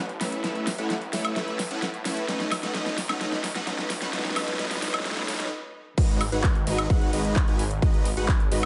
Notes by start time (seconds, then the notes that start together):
Already playing: A1
0.09 closed hi-hat
0.21 A1 A3 C#4 E4 B4 E5, snare, open hi-hat
0.32 closed hi-hat
0.44 A1 A3 C#4 E4 B4 E5, snare, closed hi-hat
0.55 closed hi-hat
0.67 snare, open hi-hat
0.78 A1 A3 C#4 E4 B4 F#5, closed hi-hat
0.90 snare, closed hi-hat
1.01 closed hi-hat
1.13 A1 A3 C#4 E4 B4 E5, snare, open hi-hat
1.25 closed hi-hat, high woodblock
1.36 A1 A3 C#4 E4 B4 E5, snare, closed hi-hat
1.48 closed hi-hat
1.59 snare, open hi-hat
1.71 A2 A3 C#4 E4 B4 F#5, closed hi-hat
1.82 snare, closed hi-hat
1.94 closed hi-hat
2.05 A2 A3 C#4 E4 B4 E5, snare, open hi-hat
2.17 closed hi-hat
2.28 B1 A3 C#4 D#4 B4 D#5, snare, closed hi-hat
2.40 snare, closed hi-hat
2.52 snare, open hi-hat, high woodblock
2.63 B1 A3 C#4 D#4 B4 F#5, snare, closed hi-hat
2.75 B1 A3 C#4 D#4 B4 D#5, snare, closed hi-hat
2.86 snare, closed hi-hat
2.98 snare, open hi-hat
3.09 B1 A3 C#4 D#4 B4 F#5, snare, closed hi-hat, high woodblock
3.21 B1 A3 C#4 D#4 B4 D#5, snare, closed hi-hat
3.32 snare, closed hi-hat
3.44 snare, open hi-hat
3.55 B1 A3 C#4 D#4 B4 F#5, snare, closed hi-hat
3.67 B1 A3 C#4 D#4 B4 D#5, snare, closed hi-hat
3.79 snare, closed hi-hat
3.90 snare, open hi-hat
4.01 B1 A3 C#4 D#4 B4 F#5, snare, closed hi-hat
4.13 B1 A3 C#4 D#4 B4 D#5, snare, closed hi-hat
4.19 snare
4.25 snare, closed hi-hat
4.30 snare
4.36 B1 A3 C#4 D#4 B4 D#5, snare, open hi-hat, high woodblock
4.42 snare
4.48 snare, closed hi-hat
4.53 snare
4.59 B1 A3 C#4 D#4 B4 D#5, snare, closed hi-hat
4.65 snare
4.71 snare, open hi-hat
4.77 snare
4.82 B1 A3 C#4 D#4 B4 D#5, snare, open hi-hat
4.88 snare
4.94 snare, closed hi-hat, high woodblock
5.00 snare
5.05 B1 A3 C#4 D#4 B4 D#5, snare, closed hi-hat
5.11 snare
5.17 snare, closed hi-hat
5.23 snare
5.28 B1 A3 C#4 D#4 B4 D#5, snare, open hi-hat
5.34 snare
5.40 snare, closed hi-hat
5.46 snare
5.98 G#1 G#3 D#4 F#4 B4 D#5, kick, closed hi-hat, crash
6.09 closed hi-hat
6.21 open hi-hat, high woodblock
6.32 G#1 G#3 D#4 F#4 B4 F#5, closed hi-hat
6.44 kick, clap, closed hi-hat
6.55 closed hi-hat
6.67 G#1 G#3 D#4 F#4 B4 D#5, open hi-hat
6.78 closed hi-hat, high woodblock
6.90 G#1 G#3 D#4 F#4 B4 F#5, kick, closed hi-hat
7.02 closed hi-hat
7.13 G#1 G#3 D#4 F#4 B4 D#5, open hi-hat
7.25 closed hi-hat
7.36 kick, clap, closed hi-hat
7.48 G#1 G#3 D#4 F#4 B4 G#5, closed hi-hat
7.59 open hi-hat
7.71 closed hi-hat
7.82 G#1 G#3 D#4 F#4 B4 D#5, kick, closed hi-hat
7.94 closed hi-hat
8.05 open hi-hat
8.17 G#1 G#3 D#4 F#4 B4 F#5, closed hi-hat
8.28 kick, clap, closed hi-hat
8.40 closed hi-hat
8.52 G#1 G#3 D#4 F#4 B4 D#5, open hi-hat